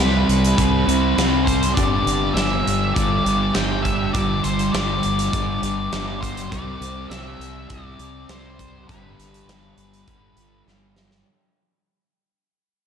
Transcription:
Already playing: C3 B4
0.00 C2 G3 C4
0.28 C2, closed hi-hat
0.45 closed hi-hat
0.57 C2 C3 G3 C4, kick, closed hi-hat
0.87 C2 G3 C4, closed hi-hat
1.16 C2 C3 G3 C4, snare, closed hi-hat
1.45 C5, kick, closed hi-hat
1.63 closed hi-hat
1.74 G1 G2 D3 G3 D5, kick, closed hi-hat
2.06 G1, closed hi-hat
2.34 G1 G2 D3 G3 E5, snare, closed hi-hat
2.66 G1, closed hi-hat
2.95 G1 G2 D3 G3 D5, kick, closed hi-hat
3.25 G1 D3 G3, closed hi-hat
3.54 G1 G2 D3 G3 G5, snare, closed hi-hat
3.83 E5, kick, closed hi-hat
4.13 G1 G2 D3 G3 D5, kick, closed hi-hat
4.43 G1 C5, closed hi-hat
4.59 closed hi-hat
4.72 G1 G2 D3 G3 D5, snare, closed hi-hat
5.03 G1, closed hi-hat
5.19 closed hi-hat
5.32 G1 G2 D3 G3, kick, closed hi-hat
5.62 G1 D3 G3, closed hi-hat
5.93 G1 G2 D3 G3, snare, closed hi-hat
6.21 C5, kick, closed hi-hat
6.37 closed hi-hat
6.50 C2 C3 G3 C4 D5, kick, closed hi-hat
6.80 C2, closed hi-hat
7.10 C2 C3 G3 C4 E5, snare, closed hi-hat
7.39 C2, closed hi-hat
7.69 C2 C3 G3 C4 D5, kick, closed hi-hat
7.99 C2 G3 C4, closed hi-hat
8.29 C2 C3 G3 C4 C5, snare, closed hi-hat
8.59 kick, closed hi-hat
8.89 G1 G2 D3 G3 B4, kick, closed hi-hat
9.18 G1, closed hi-hat
9.34 closed hi-hat
9.47 G1 G2 D3 G3, snare, closed hi-hat
9.77 G1, closed hi-hat
9.94 closed hi-hat
10.08 G1 G2 D3 G3, kick, closed hi-hat
10.36 G1 D3 G3, closed hi-hat
10.66 G1 G2 D3 G3, snare
10.96 snare
11.11 snare

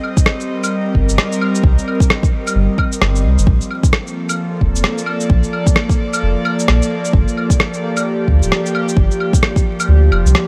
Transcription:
Already playing: G3 C4 D#5
0.04 claves
0.17 A#4, kick, shaker
0.26 cross-stick
0.40 shaker
0.64 claves, shaker
0.95 G1, kick
1.09 G1, shaker
1.18 cross-stick
1.32 shaker
1.41 claves
1.55 shaker
1.64 C2, kick
1.78 shaker
1.88 claves
2.00 kick, shaker
2.10 cross-stick
2.23 kick, shaker
2.47 claves, shaker
2.55 G1
2.78 kick, claves
2.92 shaker
3.01 G1, cross-stick
3.16 shaker
3.24 C2
3.38 G1, shaker
3.47 A#1 F3, kick
3.61 shaker
3.66 A#3
3.71 claves
3.83 kick, shaker
3.93 A4, cross-stick
4.07 shaker
4.29 claves, shaker
4.36 D5
4.61 F1, kick
4.76 F1, shaker
4.84 cross-stick
4.98 shaker
5.06 claves
5.20 shaker
5.30 A#1, kick
5.43 shaker
5.53 claves
5.67 kick, shaker
5.76 cross-stick
5.89 kick, shaker
6.13 claves, shaker
6.23 F1
6.45 claves
6.59 shaker
6.68 A#1, cross-stick
6.82 shaker
7.05 shaker
7.13 G1, kick
7.28 shaker
7.37 G4, claves
7.50 kick, shaker
7.60 cross-stick
7.74 shaker
7.97 claves, shaker
8.28 D2, kick
8.42 D1, shaker
8.52 cross-stick
8.66 shaker
8.75 claves
8.88 shaker
8.97 G1, kick
9.11 shaker
9.20 claves
9.33 kick, shaker
9.43 cross-stick
9.56 kick, shaker
9.80 claves, shaker
9.88 D2
10.11 F1, claves
10.25 C2, shaker
10.35 cross-stick

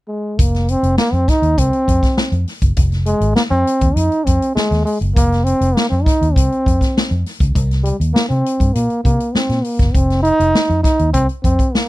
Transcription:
0.08 G#3
0.39 F1 A#3, kick, closed hi-hat
0.54 snare, closed hi-hat
0.68 C4, closed hi-hat
0.83 F1, closed hi-hat
0.98 A#3, muted fingered electric bass stroke, snare
1.13 F2 C4, closed hi-hat
1.28 D#4, kick, snare, closed hi-hat
1.42 D#2, closed hi-hat
1.58 C2 C4, kick, closed hi-hat
1.73 closed hi-hat
1.88 F2, kick, closed hi-hat
2.03 kick, snare, closed hi-hat
2.18 snare
2.32 F2, closed hi-hat
2.47 snare, open hi-hat
2.62 F#1, kick, closed hi-hat
2.76 F1, kick, closed hi-hat
2.92 snare, closed hi-hat
3.06 G#3, closed hi-hat
3.21 G#1, closed hi-hat
3.36 A#3, snare
3.50 F2 C4, closed hi-hat
3.67 closed hi-hat
3.81 D#2, kick, closed hi-hat
3.95 F2 D#4, closed hi-hat
4.12 closed hi-hat
4.25 F2 C4, kick, closed hi-hat
4.42 closed hi-hat
4.55 G#3, muted fingered electric bass stroke, snare
4.71 D#2, snare, closed hi-hat
4.85 G#3, open hi-hat
5.01 F#1, closed hi-hat
5.15 F1 A#3, kick, closed hi-hat
5.32 snare, closed hi-hat
5.44 C4, closed hi-hat
5.61 F1, closed hi-hat
5.75 A#3, snare
5.89 F2 C4, closed hi-hat
6.03 D#4, kick, snare
6.07 closed hi-hat
6.21 D#2, closed hi-hat
6.34 C2 C4, kick, closed hi-hat
6.52 closed hi-hat
6.66 F2, kick, closed hi-hat
6.81 kick, snare, closed hi-hat
6.97 snare
7.11 F2, closed hi-hat
7.26 snare, open hi-hat
7.40 C#2, kick, closed hi-hat
7.55 C2, kick, closed hi-hat
7.71 snare, closed hi-hat
7.83 G3, closed hi-hat
8.00 D#2, closed hi-hat
8.14 A#3, snare
8.29 C3 C4, closed hi-hat
8.46 closed hi-hat
8.60 G2, kick, closed hi-hat
8.74 A#2 A#3, closed hi-hat
8.90 closed hi-hat
9.04 C3 A#3, kick, closed hi-hat
9.20 closed hi-hat
9.34 C4, muted fingered electric bass stroke, snare
9.49 A#2, snare, closed hi-hat
9.64 A#3, open hi-hat
9.79 F#1, kick, snare, closed hi-hat
9.94 F1 C4, kick, closed hi-hat
10.10 snare, closed hi-hat
10.23 D#4, closed hi-hat
10.40 F1, closed hi-hat
10.55 muted fingered electric bass stroke, snare
10.70 F2, closed hi-hat
10.83 D#4, kick, snare, closed hi-hat
10.99 D#2, closed hi-hat
11.14 C2 C4, kick, closed hi-hat
11.29 closed hi-hat
11.43 F2 C4, kick, closed hi-hat
11.59 kick, closed hi-hat
11.74 A#3, snare

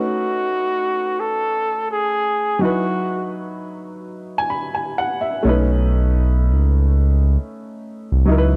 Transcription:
Already playing: A3 C#4 D#4 F#4 B4
1.20 A4
1.91 G#4
2.59 F#3 D#4 F#4
2.63 E4 B4
4.38 G#5
4.50 B5
4.75 G#5
4.98 F#5
5.21 E5
5.43 B1 A3 C#4
5.47 D#4 B4
6.51 C#2
8.12 C2
8.25 C#2 F#3 D#4 E4
8.31 A#4
8.38 B4

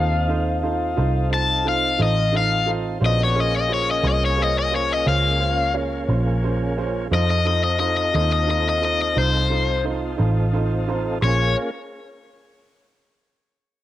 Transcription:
Already playing: D#2 C4 D#4 F4 A4 C5 F5
0.28 D#4 F4 A4 C5
0.63 D#4 F4 A4 C5
0.96 C2 D#4 F4 A4 C5
1.30 D#4 F4 A4 C5 A5
1.64 D#4 F4 A4 C5
1.68 F5
1.98 A1 D#4 F4 A4 C5
2.03 D#5
2.32 D#4 F4 A4 C5
2.37 F5
2.66 D#4 F4 A4 C5
3.00 A#1 B3 C#4 D4 F4 F#4 G#4 A4 C5
3.06 D#5
3.24 C#5
3.35 A#3 C#4 F4 G#4 C5
3.40 D#5
3.56 D#5
3.68 C#4 F4 G#4 C5
3.74 C#5
3.91 D#5
4.03 C2 C#4 F4 G#4 C5
4.09 D#5
4.26 C#5
4.37 C#4 F4 G#4 C5
4.42 D#5
4.59 D#5
4.71 C#4 F4 G#4 C5
4.76 C#5
4.92 D#5
5.05 C#2 C#4 F4 G#4 C5 F5
5.39 C#4 F4 G#4 C5
5.74 C#4 F4 G#4 C#5
6.08 A#1 C#4 F4 G#4 C5
6.42 C#4 F4 G#4 C5
6.77 C#4 F4 G#4 C5
7.11 F2 C4 D#4 F4 A4 C5 D#5
7.30 D#5
7.45 D#4 F4 A4 C5 D#5
7.64 D#5
7.79 D#4 F4 A4 C5 D#5
7.97 D#5
8.14 D#2 D#4 F4 A4 C5 D#5
8.33 D#5
8.47 D#4 F4 A4 C5 D#5
8.69 D#5
8.82 D#4 F4 A4 C5 D#5
9.02 D#5
9.16 C2 D#4 F4 A4 C5
9.50 D#4 F4 A4 C5
9.84 D#4 F4 A4 C5
10.17 A1 D#4 F4 A4 C5
10.53 D#4 F4 A4 C5
10.87 D#4 F4 A4 C5
11.21 A#1 A#3 C#4 F4 G#4 C#5 C6

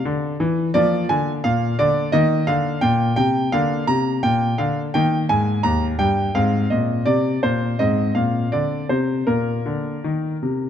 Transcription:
Already playing: D4
0.05 D3
0.40 E3
0.74 F3 A#3 D5
1.09 D3 G#5
1.44 A#2 F5
1.79 D3 D5
2.12 D#3 A#3 D#5
2.47 D3 F5
2.81 A#2 G5
3.16 C3 G5
3.52 D3 A#3 F5
3.87 C3 A#5
4.23 A#2 G5
4.58 D3 F5
4.94 D#3 A#3 G5
5.29 G#2 G#5
5.63 D#2 A#5
5.99 G2 G5
6.35 G#2 C4 F5
6.70 A#2 D#5
7.06 C3 D5
7.43 A#2 C5
7.79 G#2 C4 D#5
8.15 A#2 F5
8.52 D3 D5
8.89 C3 C5
9.27 A#2 A#3 A#4
9.66 D3
10.04 D#3
10.43 C3

